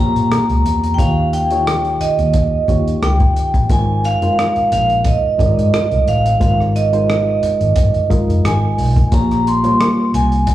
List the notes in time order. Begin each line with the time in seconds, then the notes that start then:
Already playing: A#1 A#3 F4 G4 C5 C#5 A#5
0.15 A#2, closed hi-hat
0.31 cross-stick, closed hi-hat
0.49 C#2, closed hi-hat
0.65 E2, closed hi-hat
0.84 closed hi-hat
0.94 D#3 D#4 F4 G5
0.99 D#2 G4 C#5 F5, kick, closed hi-hat
1.33 G5, closed hi-hat
1.50 D#3 D#4 F4 G4 C#5, closed hi-hat
1.67 cross-stick, closed hi-hat
1.85 closed hi-hat
2.00 D#5, muted fingered electric bass stroke, closed hi-hat
2.19 D#2, closed hi-hat
2.33 kick, closed hi-hat
2.68 D#2 D#3 D#4 F4 G4 C#5, kick, closed hi-hat
2.88 closed hi-hat
3.02 C#2 G5, cross-stick, closed hi-hat
3.20 kick, closed hi-hat
3.36 closed hi-hat
3.54 A1, kick, closed hi-hat
3.69 G#1 G#3 D#4 F4 A#4 C5 G#5, kick, closed hi-hat
4.04 F5, closed hi-hat
4.22 G#3 D#4 F4 A#4 C5, closed hi-hat
4.39 cross-stick, closed hi-hat
4.56 muted fingered electric bass stroke, closed hi-hat
4.72 A#1 F5, closed hi-hat
4.90 closed hi-hat
5.04 D#5, kick, closed hi-hat
5.38 G#1 G#3 D#4 F4 A#4 D5, kick, closed hi-hat
5.46 D#5
5.57 G#2, closed hi-hat
5.74 cross-stick, closed hi-hat
5.91 C2, closed hi-hat
6.07 A1 F5, closed hi-hat
6.26 closed hi-hat
6.40 G#1 G#3 D#4 F4 A#4 C5 F5, kick, closed hi-hat
6.60 cross-stick
6.76 D#5, closed hi-hat
6.93 G#3 D#4 F4 A#4 C5, closed hi-hat
7.10 cross-stick, closed hi-hat
7.43 muted fingered electric bass stroke, closed hi-hat
7.61 G#1, closed hi-hat
7.76 G#1, kick, closed hi-hat
7.94 G1, closed hi-hat
8.10 G#3 D#4 F4 A#4 D#5, kick, closed hi-hat
8.28 F1, closed hi-hat
8.44 G#1 G#5, cross-stick, closed hi-hat
8.78 B1, open hi-hat
8.96 kick, closed hi-hat
9.11 A#1 A#3 F4 G4 C5 C#5 A#5, kick, closed hi-hat
9.31 cross-stick, closed hi-hat
9.47 C6, closed hi-hat
9.63 G3 A#3 F4 C5 C#5, closed hi-hat
9.80 cross-stick, closed hi-hat
10.14 C2 G#5, closed hi-hat
10.32 closed hi-hat
10.47 kick, closed hi-hat